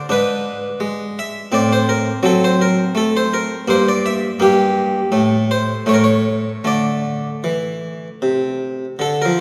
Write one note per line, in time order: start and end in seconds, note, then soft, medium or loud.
0.09 0.66 G#2 medium
0.09 1.48 D4 soft
0.09 1.02 B4 medium
0.80 1.37 G#3 medium
1.19 1.53 E5 medium
1.52 2.09 A2 medium
1.52 2.20 C4 soft
1.52 1.71 D5 medium
1.73 1.89 C5 medium
1.89 2.19 A#4 medium
2.23 2.81 F#3 medium
2.23 3.64 C4 soft
2.23 2.43 A4 medium
2.44 2.61 C5 medium
2.62 2.92 A#4 medium
2.95 3.53 A3 medium
2.95 3.15 A4 medium
3.17 3.33 C5 medium
3.34 3.69 A#4 medium
3.68 4.26 G2 medium
3.68 4.37 A#3 soft
3.68 3.87 C5 medium
3.88 4.06 D5 medium
4.06 4.42 E5 medium
4.40 4.98 G2 medium
4.40 5.08 A#3 soft
4.40 5.34 G4 medium
5.12 5.71 A2 soft
5.12 5.82 A3 soft
5.51 5.82 C5 medium
5.86 6.49 A2 soft
5.86 6.60 A3 soft
5.86 5.95 C#5 medium
5.94 6.01 A#4 medium
6.04 6.66 C#5 medium
6.64 7.28 D3 soft
6.64 8.96 A3 soft
6.64 8.33 D5 medium
7.44 8.07 E3 soft
8.22 8.84 C3 soft
8.99 9.24 D3 soft
8.99 9.19 A4 medium
9.22 9.40 F3 soft
9.22 9.39 A#4 medium